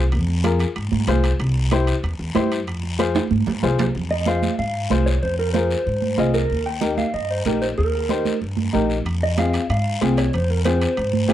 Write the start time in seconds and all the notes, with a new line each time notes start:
Already playing: C2
0.12 F2, high timbale, long guiro
0.28 high conga
0.44 F4 G#4 A#4, high conga, high timbale, short guiro
0.60 high timbale, short guiro
0.76 G#2, high conga, high timbale, long guiro
0.92 G#2, high conga
1.08 C2 F4 G#4 C5, high conga, high timbale, low timbale, short guiro
1.24 high timbale, short guiro
1.39 C2, high timbale, long guiro
1.56 high conga
1.71 E4 G4 C5, high conga, high timbale, short guiro
1.87 high timbale, short guiro
2.03 E2, high conga, high timbale, long guiro
2.19 E2
2.35 G2 E4 G4 C5, high conga, high timbale, low timbale, short guiro
2.52 high timbale, short guiro
2.67 F2, high timbale, long guiro
2.83 high conga
2.99 F4 G#4 C5, high conga, high timbale, short guiro
3.15 high conga, high timbale, short guiro
3.31 G#2, high conga, long guiro
3.47 G#2, low conga, low timbale
3.63 C2 F4 G#4 C5, low conga, low timbale, short guiro
3.79 low conga, low timbale, short guiro
3.95 F2, long guiro
4.10 D#5, high conga
4.26 F4 G#4 C5 F5, high conga, short guiro
4.42 high conga, short guiro
4.58 G#2 F5, high conga, long guiro
4.90 C2 F4 G#4 C5, high conga, short guiro
5.06 C#5, short guiro
5.23 F2 C5, long guiro
5.39 A#4, high conga
5.53 F4 G#4 A#4 C5, high conga, short guiro
5.71 short guiro
5.86 G#2, high conga, long guiro
6.02 high conga
6.18 C2 F4 G#4 D#5, high conga, short guiro
6.34 A#4, short guiro
6.50 D#2, long guiro
6.66 G5, high conga
6.81 D#4 G4 A#4, high conga, short guiro
6.97 F5, high conga, short guiro
7.14 G2 D#5, high conga, long guiro
7.30 C5
7.45 A#1 D#4 G4 A#4, high conga, short guiro
7.62 C5, short guiro
7.78 D#2 A#4, long guiro
7.94 high conga
8.09 D#4 G4 C5, high conga, short guiro
8.25 high conga, short guiro
8.41 G2, high conga, long guiro
8.57 high conga
8.73 A#1 D#4 G4 A#4, high conga, short guiro
8.90 short guiro
9.05 F2, high timbale, long guiro
9.21 D#5, high conga
9.38 C4 F4 G#4 F5, high conga, high timbale, short guiro
9.53 high timbale, short guiro
9.70 G#2 F5, high conga, high timbale, long guiro
10.01 C2 C4 F4 G#4, high conga, high timbale, short guiro
10.17 C#5, high timbale, short guiro
10.33 F2 C5, high timbale, long guiro
10.50 A#4, high conga
10.65 C4 F4 G#4 C5, high conga, high timbale, short guiro
10.81 high timbale, short guiro
10.97 G#2, high conga, high timbale, long guiro
11.13 high conga
11.28 C2 C4 F4 G#4, high conga, high timbale, short guiro